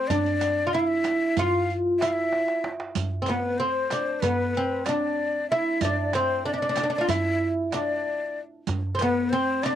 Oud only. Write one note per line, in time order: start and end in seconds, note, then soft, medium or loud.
0.10 0.66 D4 loud
0.67 0.73 F4 medium
0.74 1.39 E4 loud
1.39 2.02 F4 loud
2.02 2.69 E4 medium
3.22 3.28 C4 medium
3.29 3.61 B3 medium
3.60 3.92 C4 medium
3.92 4.24 D4 medium
4.24 4.52 B3 medium
4.57 4.88 C4 medium
4.89 5.51 D4 medium
5.52 5.83 E4 loud
5.85 6.15 D4 medium
6.15 6.45 C4 medium
6.46 6.52 D4 medium
6.54 6.61 D4 medium
6.62 6.68 D4 medium
6.69 6.76 D4 medium
6.77 6.82 D4 medium
6.83 6.89 D4 medium
6.90 6.97 D4 medium
6.98 7.05 D4 medium
6.98 7.08 F4 medium
7.09 7.74 E4 loud
7.74 8.40 D4 medium
8.95 9.00 C4 medium
9.02 9.33 B3 loud
9.33 9.64 C4 medium
9.66 9.75 D4 loud